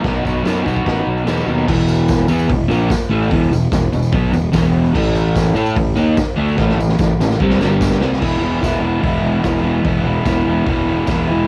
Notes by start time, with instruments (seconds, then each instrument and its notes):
0.03 fingered electric bass B1, overdriven electric guitar B2 F#3 B3 D#4 F#4, kick, snare, tambourine, crash
0.15 tambourine
0.23 fingered electric bass B1, overdriven electric guitar B3 D#4 F#4, kick, tambourine
0.43 fingered electric bass F#2, overdriven electric guitar F#3 B3 D#4 F#4, snare, tambourine, crash
0.58 tambourine
0.63 fingered electric bass B1, overdriven electric guitar B3 D#4 F#4, kick
0.68 tambourine
0.76 kick, tambourine
0.86 fingered electric bass A1, kick, snare, tambourine, crash
0.97 tambourine
1.07 fingered electric bass B1
1.18 tambourine
1.25 fingered electric bass E2, overdriven electric guitar B2 F#3 B3 D#4 F#4, snare, tambourine, crash
1.37 tambourine
1.46 fingered electric bass D#2, overdriven electric guitar B3 D#4 F#4, tambourine
1.58 tambourine
1.67 fingered electric bass E1, overdriven electric guitar E2 B2 E3, kick, crash
1.79 tambourine
1.88 tambourine
2.08 kick, snare, open hi-hat, tambourine
2.28 fingered electric bass E2, overdriven electric guitar E3 B3 E4, tambourine
2.39 tambourine
2.48 fingered electric bass E1, overdriven electric guitar E2 B2, kick, open hi-hat
2.68 fingered electric bass A#1, overdriven electric guitar A#2 F3 A#3, tambourine
2.89 muted overdriven electric guitar stroke, muted fingered electric bass stroke, kick, snare, open hi-hat, tambourine
3.09 fingered electric bass A1, overdriven electric guitar A2 E3 A3
3.23 tambourine
3.29 fingered electric bass E1, overdriven electric guitar E2 B2 E3, kick, open hi-hat
3.43 tambourine
3.51 fingered electric bass E1, overdriven electric guitar E2 B2, tambourine
3.71 fingered electric bass E1, overdriven electric guitar E2 B2, kick, snare, open hi-hat, tambourine
3.93 fingered electric bass E1, overdriven electric guitar E2 B2, tambourine
4.03 tambourine
4.12 fingered electric bass B1, overdriven electric guitar B2 F#3 B3, kick, open hi-hat, tambourine
4.32 fingered electric bass E1, overdriven electric guitar E2 B2, tambourine
4.52 fingered electric bass E1, overdriven electric guitar E2 B2 E3, kick, snare, open hi-hat, tambourine
4.86 tambourine
4.93 fingered electric bass A1, overdriven electric guitar A2 E3 A3, kick, crash
5.06 tambourine
5.16 tambourine
5.36 kick, snare, open hi-hat, tambourine
5.54 fingered electric bass A2, overdriven electric guitar A3 E4 A4, tambourine
5.66 tambourine
5.76 fingered electric bass A1, overdriven electric guitar A2 E3, kick, open hi-hat, tambourine
5.96 fingered electric bass D#2, overdriven electric guitar D#3 A#3 D#4, tambourine
6.17 muted overdriven electric guitar stroke, muted fingered electric bass stroke, kick, snare, open hi-hat, tambourine
6.36 fingered electric bass D2, overdriven electric guitar D3 A3 D4
6.49 tambourine
6.58 fingered electric bass A1, overdriven electric guitar A2 E3 A3, kick, snare, tambourine
6.69 snare
6.78 fingered electric bass A1, overdriven electric guitar A2 E3, tambourine
6.89 snare, tambourine
6.99 fingered electric bass A1, overdriven electric guitar A2 E3, kick, snare, tambourine
7.10 tambourine
7.18 fingered electric bass A1, overdriven electric guitar A2 E3, snare, tambourine
7.30 snare, tambourine
7.40 fingered electric bass C2, overdriven electric guitar C3 G3 C4, kick, tambourine
7.50 snare, tambourine
7.57 fingered electric bass G1, overdriven electric guitar G2 D3, snare, tambourine
7.62 overdriven electric guitar G3
7.72 tambourine
7.81 kick, snare, tambourine
7.91 snare
7.99 fingered electric bass C2, overdriven electric guitar C3 G3 C4, snare
8.04 tambourine
8.12 snare, tambourine
8.19 fingered electric bass E1, overdriven electric guitar E2 B2 E3 G#3 B3 E4, kick, crash
8.40 fingered electric bass E1, overdriven electric guitar G#3 B3 E4
8.44 overdriven electric guitar E3
8.61 fingered electric bass E1, overdriven electric guitar E3 G#3 B3 E4, kick, snare, open hi-hat, tambourine
8.80 fingered electric bass E1, overdriven electric guitar E3 G#3 B3 E4
8.99 fingered electric bass E1, overdriven electric guitar E2 B2 E3 G#3 B3 E4
9.04 kick, open hi-hat
9.22 fingered electric bass E1
9.41 fingered electric bass E1, overdriven electric guitar E3 G#3 B3 E4, kick, snare, open hi-hat, tambourine
9.62 overdriven electric guitar E3 G#3 B3 E4
9.82 fingered electric bass E1, overdriven electric guitar E2 B2 E3 G#3 B3 E4, kick, open hi-hat
10.03 fingered electric bass E1, overdriven electric guitar E3 G#3 B3 E4
10.24 fingered electric bass E1, overdriven electric guitar E3 G#3 B3 E4, kick, snare, open hi-hat, tambourine
10.45 fingered electric bass E1, overdriven electric guitar E3 G#3 B3 E4
10.65 fingered electric bass E1, overdriven electric guitar E2 B2 E3 G#3 B3 E4, kick, open hi-hat
10.87 fingered electric bass E1
11.06 fingered electric bass E1, overdriven electric guitar E3 G#3 B3 E4, kick, snare, open hi-hat, tambourine
11.27 overdriven electric guitar E3 G#3 B3 E4